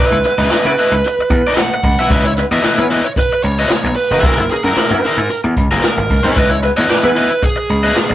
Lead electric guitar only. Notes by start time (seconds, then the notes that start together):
Already playing: B4
1.58 F#5
2.11 E5
2.25 C#5
2.53 E5
2.79 C#5
3.05 C#5
3.17 B4
3.43 C#5
3.69 C#5
3.96 B4
4.26 A#4
4.51 G#4
4.64 A#4
5.83 A#4
6.36 B4
6.51 C#5
6.77 C#5
6.90 B4
7.17 B4
7.43 G#4